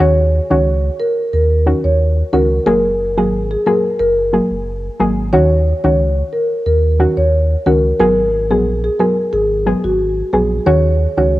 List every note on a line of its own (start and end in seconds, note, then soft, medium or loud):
0.00 0.40 D#2 loud
0.00 0.20 D#3 medium
0.00 0.21 C#4 medium
0.00 0.21 F#4 loud
0.00 0.25 C#5 loud
0.50 0.89 C#2 medium
0.50 0.70 D#3 medium
0.50 0.70 C#4 medium
0.50 0.70 F#4 medium
0.50 0.63 C#5 medium
1.00 1.13 A#4 medium
1.33 1.73 D#2 loud
1.33 1.46 A#4 medium
1.66 1.87 D#3 medium
1.66 1.87 C#4 medium
1.66 1.87 F#4 medium
1.84 2.23 D#2 medium
1.84 1.96 C#5 medium
2.33 2.59 C#2 medium
2.33 2.54 D#3 medium
2.33 2.54 C#4 medium
2.33 2.54 F#4 medium
2.33 2.46 A#4 medium
2.66 3.19 F#1 loud
2.66 2.87 F#3 loud
2.66 2.87 A#3 medium
2.66 2.87 G#4 loud
2.66 2.92 A#4 loud
3.17 3.56 G#1 medium
3.17 3.37 F#3 medium
3.17 3.37 A#3 medium
3.17 3.29 G#4 medium
3.17 3.37 G#4 medium
3.51 3.63 G#4 medium
3.66 3.87 F#3 medium
3.66 3.87 A#3 medium
3.66 3.87 G#4 medium
3.66 3.80 A#4 medium
3.99 4.40 F#1 loud
3.99 4.48 A#4 loud
4.33 4.54 F#3 medium
4.33 4.54 A#3 medium
4.33 4.54 G#4 medium
4.51 4.89 F#1 medium
5.00 5.34 G#1 loud
5.00 5.30 F#3 medium
5.00 5.31 A#3 medium
5.00 5.31 G#4 medium
5.33 5.73 D#2 loud
5.33 5.54 D#3 medium
5.33 5.54 C#4 medium
5.33 5.54 F#4 loud
5.33 5.58 C#5 loud
5.84 6.23 C#2 medium
5.84 6.03 D#3 medium
5.84 6.03 C#4 medium
5.84 6.04 F#4 medium
5.84 5.96 C#5 medium
6.33 6.46 A#4 medium
6.66 7.07 D#2 loud
6.66 6.80 A#4 medium
6.99 7.20 D#3 medium
6.99 7.21 C#4 medium
6.99 7.21 F#4 medium
7.17 7.56 D#2 loud
7.17 7.29 C#5 medium
7.66 7.93 C#2 loud
7.66 7.87 D#3 medium
7.66 7.87 C#4 medium
7.66 7.87 F#4 medium
7.66 7.80 A#4 medium
7.99 8.52 G#1 loud
7.99 8.20 F#3 medium
7.99 8.21 B3 medium
7.99 8.21 G#4 loud
7.99 8.25 A#4 loud
8.50 8.89 A#1 loud
8.50 8.70 F#3 medium
8.50 8.70 B3 medium
8.50 8.62 G#4 medium
8.50 8.70 G#4 medium
8.84 8.96 G#4 medium
8.99 9.20 F#3 medium
8.99 9.21 B3 medium
8.99 9.21 G#4 medium
8.99 9.13 A#4 medium
9.33 9.73 G#1 loud
9.33 9.46 G#4 medium
9.66 9.87 F#3 medium
9.66 9.87 B3 medium
9.66 9.87 G#4 medium
9.84 10.23 G#1 medium
9.84 9.96 F#4 medium
10.33 10.59 A#1 medium
10.33 10.64 F#3 medium
10.33 10.64 B3 medium
10.33 10.46 G#4 medium
10.33 10.64 G#4 medium
10.66 11.07 D#2 loud
10.66 10.87 D#3 loud
10.66 10.87 C#4 medium
10.66 10.87 F#4 loud
10.66 10.92 C#5 loud
11.17 11.40 C#2 loud
11.17 11.37 D#3 medium
11.17 11.37 C#4 medium
11.17 11.37 F#4 medium
11.17 11.29 C#5 medium